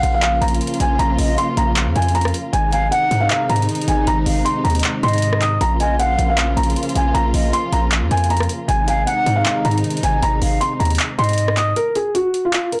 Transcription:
Already playing: C#3 F3 A#3 F4 F5 F#5
0.03 A#1, closed hi-hat
0.14 F5
0.22 F5, clap, closed hi-hat
0.41 A#1 A#5, closed hi-hat
0.48 closed hi-hat
0.55 closed hi-hat
0.61 closed hi-hat
0.67 closed hi-hat
0.74 closed hi-hat
0.80 A#1 G#5, closed hi-hat
0.99 A#1 A#5, closed hi-hat
1.18 A#1 D#5, open hi-hat
1.38 C6, closed hi-hat
1.57 A#1 A#5, closed hi-hat
1.76 clap, closed hi-hat
1.86 F2
1.96 F2 G#5, closed hi-hat
2.02 closed hi-hat
2.08 closed hi-hat
2.15 A#5, closed hi-hat
2.21 cross-stick, closed hi-hat
2.28 closed hi-hat
2.34 closed hi-hat
2.53 G#1 C3 D#3 G#3 D#4 G#5, closed hi-hat
2.72 F5 G#5, closed hi-hat
2.91 F#5, closed hi-hat
3.11 G#2, closed hi-hat
3.20 F5
3.30 F5, clap, closed hi-hat
3.49 G#2 A#5, closed hi-hat
3.56 closed hi-hat
3.62 closed hi-hat
3.69 closed hi-hat
3.75 closed hi-hat
3.81 closed hi-hat
3.88 G#1 G#5, closed hi-hat
4.07 G#1 A#5, closed hi-hat
4.26 G#1 F5, open hi-hat
4.45 C6, closed hi-hat
4.64 D#2 A#5, closed hi-hat
4.70 closed hi-hat
4.75 closed hi-hat
4.79 closed hi-hat
4.84 clap, closed hi-hat
5.03 G#2 D#5 C6, closed hi-hat
5.08 closed hi-hat
5.13 closed hi-hat
5.18 closed hi-hat
5.22 closed hi-hat
5.33 cross-stick
5.42 D#6, clap, closed hi-hat
5.61 A#1 C#3 F3 A#3 F4 A#5, closed hi-hat
5.80 D#5 G#5, closed hi-hat
5.99 F5 F#5, closed hi-hat
6.19 A#1, closed hi-hat
6.30 F5
6.38 clap, closed hi-hat
6.57 A#1 A#5, closed hi-hat
6.63 closed hi-hat
6.70 closed hi-hat
6.76 closed hi-hat
6.83 closed hi-hat
6.89 closed hi-hat
6.96 A#1 G#5, closed hi-hat
7.14 A#1 A#5, closed hi-hat
7.34 A#1 D#5, open hi-hat
7.53 C6, closed hi-hat
7.72 A#1 A#5, closed hi-hat
7.92 clap, closed hi-hat
8.02 F2
8.11 F2 G#5, closed hi-hat
8.17 closed hi-hat
8.24 closed hi-hat
8.30 A#5, closed hi-hat
8.37 cross-stick, closed hi-hat
8.43 closed hi-hat
8.49 closed hi-hat
8.68 G#1 C3 D#3 G#3 D#4 G#5, closed hi-hat
8.88 F5 G#5, closed hi-hat
9.07 F#5, closed hi-hat
9.26 G#2, closed hi-hat
9.36 F5
9.46 F5, clap, closed hi-hat
9.65 G#2 A#5, closed hi-hat
9.71 closed hi-hat
9.78 closed hi-hat
9.84 closed hi-hat
9.90 closed hi-hat
9.97 closed hi-hat
10.03 G#1 G#5, closed hi-hat
10.23 G#1 A#5, closed hi-hat
10.42 G#1 F5, open hi-hat
10.61 C6, closed hi-hat
10.80 D#2 A#5, closed hi-hat
10.85 closed hi-hat
10.90 closed hi-hat
10.95 closed hi-hat
10.99 clap, closed hi-hat
11.19 G#2 D#5 C6, closed hi-hat
11.24 closed hi-hat
11.29 closed hi-hat
11.33 closed hi-hat
11.38 closed hi-hat
11.48 cross-stick
11.57 D#6, clap, closed hi-hat
11.76 A#4, closed hi-hat
11.95 G#4, closed hi-hat
12.15 F#4, closed hi-hat
12.34 closed hi-hat
12.45 F4
12.53 F4, clap, closed hi-hat
12.72 A#4, closed hi-hat

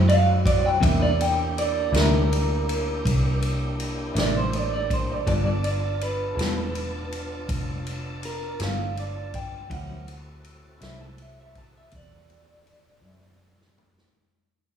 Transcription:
Already playing: F#2 F#3 C4 E4 F#4
0.09 F5, ride
0.46 D5, kick, ride
0.66 G5
0.80 E2 C3 A#3 D4 E4 G4, kick, ride
1.02 D5
1.21 G5, ride
1.58 D5, ride
1.92 D2 C3 A#3 D4 E4, snare, ride
1.96 A#4
2.33 ride
2.69 ride
3.05 C2, kick, ride
3.42 ride
3.80 ride
4.14 A1 C3 A#3 D4 E4, snare, ride
4.19 D5
4.37 C5
4.53 D5, ride
4.74 D5
4.90 C5, kick, ride
5.12 D5
5.24 G1 G3 B3 D4 F4 A4 A5, kick, ride
5.29 D5
5.45 D5
5.64 D5, ride
6.01 B4, ride
6.35 E1 G3 B3 F4 A4
6.39 snare, ride
6.75 ride
7.12 ride
7.48 F1, kick, ride
7.87 ride
8.23 A#4, ride
8.60 G1 G3 B3 F4 A4, snare, ride
8.64 F5
8.97 D5, ride
9.34 G5, kick, ride
9.69 D2 D3 F3 F#3 C4 C#4 E4 G4 A#4 F#5, kick, ride
10.06 C4 E4 F#4 A4, ride
10.44 ride
10.80 C2 D3 F#3 C4 E4 E5, snare, ride
11.01 A5
11.18 ride
11.22 E5
11.41 E5
11.55 A5, kick, ride
11.78 E5
11.91 E2, kick, ride
11.96 D5
12.30 ride
12.67 ride
13.01 F#2 D3 F#3 C4 E4, high tom
13.23 high tom
13.61 snare
13.78 floor tom
13.98 snare

